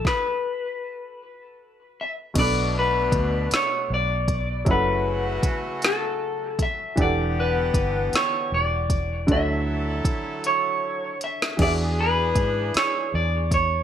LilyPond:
<<
  \new Staff \with { instrumentName = "Clean electric guitar" } { \time 6/8 \key b \minor \tempo 4. = 52 b'2 r8 e''8 | d''8 b'4 cis''8 d''4 | b'4. a'4 e''8 | d''8 b'4 cis''8 d''4 |
e''4. cis''4 e''8 | d''8 b'4 cis''8 d''8 cis''8 | }
  \new Staff \with { instrumentName = "Grand piano" } { \time 6/8 \key b \minor r2. | <b, b d' a' b'>2. | <fis cis' e' a' fis''>2. | <e d' g' a' fis''>2. |
<d d' fis' cis'' e''>2. | <e d' fis' gis' e''>2. | }
  \new Staff \with { instrumentName = "Horn section" } { \time 6/8 \key b \minor r2. | <b, a d'>2~ <b, a d'>8 r8 | <cis a fis'>2~ <cis a fis'>8 r8 | <d b g'>2~ <d b g'>8 r8 |
<fis e' a'>2~ <fis e' a'>8 r8 | <e d' gis'>2~ <e d' gis'>8 r8 | }
  \new Staff \with { instrumentName = "Fingered electric bass" } { \clef bass \time 6/8 \key b \minor r2. | b,,4 d,8 r8 b,,4 | fis,,4 r2 | e,,4 g,,8 r8 e,,4 |
d,4 r2 | e,4 gis,8 r8 e,4 | }
  \new DrumStaff \with { instrumentName = "Drums" } \drummode { \time 6/8 <bd sn>4. r4. | <cymc hh bd>4 <hh bd>8 <hh sn>4 <hh bd>8 | <hh bd>4 <hh bd>8 <hh sn>4 <hh bd>8 | <hh bd>4 <hh bd>8 <hh sn>4 <hh bd>8 |
<hh bd>4 <hh bd>8 hh4 hh16 sn16 | <cymc bd>4 <hh bd>8 <hh sn>4 <hh bd>8 | }
>>